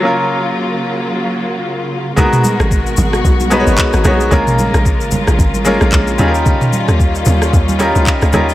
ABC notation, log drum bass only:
X:1
M:4/4
L:1/16
Q:"Swing 16ths" 1/4=112
K:G#dor
V:1 name="Log drum bass" clef=bass
z16 | z3 G,,,3 G,,,2 B,,,3 G,,, z G,,, B,,,2 | A,,,3 A,,,2 G,,,2 A,,, G,,,3 A,,, A,,,2 D,,2 | z3 D,,3 D,,2 D,,3 C,, z C,, D,,2 |]